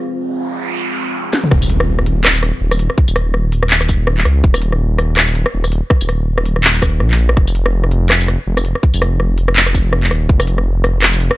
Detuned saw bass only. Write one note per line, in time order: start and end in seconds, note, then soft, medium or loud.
1.52 2.52 D#1 loud
2.61 2.89 D#1 medium
3.08 3.88 D#1 medium
3.89 4.25 D#1 loud
4.25 4.43 C#2 medium
4.44 5.45 D#1 loud
5.54 5.81 D#1 medium
6.01 7.02 D#1 medium
7.00 7.36 A#1 medium
7.37 8.37 F1 loud
8.47 8.74 F1 medium
8.93 9.74 F1 medium
9.75 10.10 F1 loud
10.11 10.28 D#1 medium
10.29 11.30 F1 loud